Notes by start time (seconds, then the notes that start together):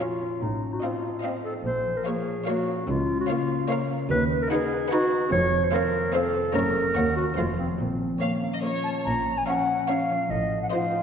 Already playing: A#2 F3 F4 C#5
0.00 C#4 F4 A#4 C#5 F5
0.21 C#4
0.42 A1 A2 D#4
0.63 A3
0.73 F#4
0.83 C4 F4 D#5 F5
1.04 D#5
1.22 C4 C5 D#5 F5
1.45 D#4 A4
1.65 A#1 A#2 C5
1.85 F3
1.97 A#4
2.05 A#3 F4 G#4 C#5 F5
2.27 C#5
2.46 A#3 F#4 A#4 C#5 F5
2.68 C#4
2.88 C#2 C#3 F4
3.08 A#3
3.20 F#4
3.28 A#3 F4 C#5 F5
3.49 C#5
3.69 A#3 A#4 C#5 F5
3.90 C#4
4.10 D#2 D#3 B4
4.30 D#4
4.41 A#4
4.50 D#4 F#4 G#4 B4 F#5
4.70 B4
4.91 D#4 F#4 B4 D#5 F#5
5.11 B3
5.32 F1 F2 C#5
5.52 C3
5.64 C5
5.72 C4 F4 A#4 C5 F5
5.93 C5
6.13 C4 F4 A4 C5 F5
6.34 C4
6.54 F#1 F#2 A#3 A#4 C#5 A#5
6.74 C#4 F#4
6.96 D#2 D#3 A#3 C#5 F#5
7.16 C#4 F#4
7.37 F1 F2 F3 A3 F4 C5 F5
7.58 C4 F4
7.79 A#1 A#2 C4
8.01 F3
8.21 A#3 C#4 C#5 F5
8.43 A#4
8.54 D#5
8.63 A#3 F4 C#5
8.84 A#3 A5
9.05 A#1 A#2 A#5
9.27 F3
9.38 G#5
9.47 C#4 C#5 F5 F#5
9.69 A#4
9.89 C#4 C#5 F5
10.10 F3
10.30 A1 A2 D#5
10.51 A3
10.62 F#5
10.72 D#4 F4 C5 D#5 F5
10.93 C5